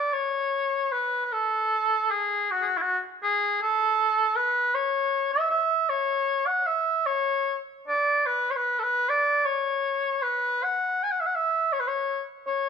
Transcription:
0.00 0.15 D5 medium
0.13 0.94 C#5 medium
0.92 1.24 B4 medium
1.24 1.34 B4 medium
1.32 2.12 A4 medium
2.11 2.52 G#4 medium
2.51 2.63 F#4 medium
2.62 2.79 F#4 medium
2.62 2.66 G#4 medium
2.77 2.83 E4 medium
2.82 2.98 F#4 medium
3.23 3.59 G#4 medium
3.62 4.38 A4 medium
4.36 4.76 B4 medium
4.75 5.32 C#5 medium
5.33 5.50 E5 medium
5.50 5.91 E5 medium
5.89 6.48 C#5 medium
6.47 6.68 F#5 medium
6.67 7.08 E5 medium
7.06 7.59 C#5 medium
7.88 8.28 D5 medium
8.26 8.52 B4 medium
8.51 8.58 C#5 medium
8.56 8.81 B4 medium
8.79 8.84 A4 soft
8.79 9.11 B4 medium
9.09 9.47 D5 medium
9.46 10.24 C#5 medium
10.22 10.65 B4 medium
10.63 11.05 F#5 medium
11.04 11.12 G#5 medium
11.11 11.22 F#5 medium
11.21 11.28 E5 medium
11.27 11.37 F#5 medium
11.36 11.74 E5 medium
11.73 11.82 C#5 medium
11.80 11.89 B4 medium
11.88 12.24 C#5 medium
12.47 12.69 C#5 medium

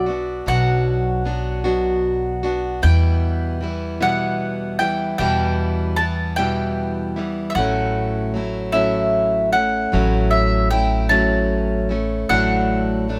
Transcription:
0.00 0.44 B1 medium
0.00 0.50 D5 medium
0.06 0.46 B3 soft
0.06 0.46 D4 soft
0.06 0.46 F#4 soft
0.46 2.79 B1 medium
0.46 1.25 B2 medium
0.46 1.23 F#3 medium
0.46 1.25 B3 medium
0.46 1.25 D4 medium
0.46 1.26 F#4 medium
0.46 2.40 F#5 medium
1.24 1.64 F#3 soft
1.24 1.64 B3 soft
1.24 1.64 D4 soft
1.24 1.63 F#4 soft
1.64 2.44 B2 soft
1.64 2.44 F#3 medium
1.64 2.45 B3 medium
1.64 2.43 D4 medium
1.64 2.42 F#4 medium
2.43 2.82 B3 soft
2.43 2.83 D4 soft
2.43 2.83 F#4 medium
2.82 3.61 E2 medium
2.82 5.16 E2 medium
2.82 3.62 B2 medium
2.82 3.60 E3 medium
2.82 3.61 G3 medium
2.82 3.62 B3 medium
2.82 3.63 E4 medium
2.82 4.02 G5 medium
3.61 4.00 E3 soft
3.61 4.00 G3 medium
3.61 3.99 B3 soft
3.61 3.99 E4 medium
4.00 4.81 E2 soft
4.00 4.81 B2 soft
4.00 4.81 E3 soft
4.00 4.80 G3 medium
4.00 4.79 B3 soft
4.00 4.79 E4 medium
4.00 4.77 F#5 medium
4.79 5.18 E3 soft
4.79 5.19 G3 soft
4.79 5.19 B3 soft
4.79 5.19 E4 soft
4.79 5.17 G5 medium
5.18 5.98 E2 medium
5.18 7.52 E2 medium
5.18 5.98 B2 medium
5.18 5.98 E3 medium
5.18 5.98 G3 medium
5.18 5.99 B3 medium
5.18 6.00 E4 medium
5.18 5.94 G5 medium
5.96 6.38 E3 soft
5.96 6.38 G3 soft
5.96 6.38 B3 soft
5.96 6.34 A5 medium
6.01 6.37 E4 soft
6.36 7.18 E2 soft
6.36 7.17 B2 soft
6.36 7.18 E3 medium
6.36 7.16 G3 soft
6.36 7.16 B3 soft
6.36 7.16 E4 soft
6.36 7.22 G5 medium
7.16 7.57 E3 soft
7.16 7.56 G3 soft
7.16 7.56 B3 soft
7.16 7.56 E4 soft
7.50 7.55 E5 medium
7.55 9.89 A1 medium
7.55 8.35 A2 medium
7.55 8.33 F#3 medium
7.55 8.35 A3 medium
7.55 8.35 C#4 medium
7.55 8.36 E4 medium
7.55 8.77 F#5 medium
8.34 8.74 F#3 soft
8.34 8.73 A3 soft
8.34 8.73 C#4 soft
8.34 8.73 E4 soft
8.72 9.54 A2 soft
8.72 9.55 F#3 soft
8.72 9.55 A3 soft
8.72 9.53 C#4 soft
8.72 9.52 E4 medium
8.72 9.55 E5 medium
9.52 9.92 A3 soft
9.52 9.93 C#4 soft
9.52 9.92 E4 soft
9.52 10.30 F#5 medium
9.92 12.26 A1 medium
9.92 10.71 A2 medium
9.92 10.70 F#3 medium
9.92 10.71 A3 medium
9.92 10.71 C#4 medium
9.92 10.73 E4 medium
10.31 10.70 E5 medium
10.71 11.10 F#3 soft
10.71 11.10 A3 soft
10.71 11.09 C#4 medium
10.71 11.09 E4 medium
10.71 11.09 G5 medium
11.09 11.90 A2 soft
11.09 11.92 F#3 medium
11.09 11.91 A3 medium
11.09 11.89 C#4 medium
11.09 11.89 E4 medium
11.09 11.95 A5 medium
11.89 12.29 A3 soft
11.89 12.30 C#4 soft
11.89 12.29 E4 soft
12.29 13.20 A1 medium
12.29 13.08 A2 medium
12.29 13.08 F#3 medium
12.29 13.08 A3 medium
12.29 13.10 D4 medium
12.29 13.09 E4 medium
12.29 13.20 F#5 medium
13.08 13.20 F#3 soft
13.08 13.20 A3 medium
13.08 13.20 D4 medium
13.08 13.20 E4 soft

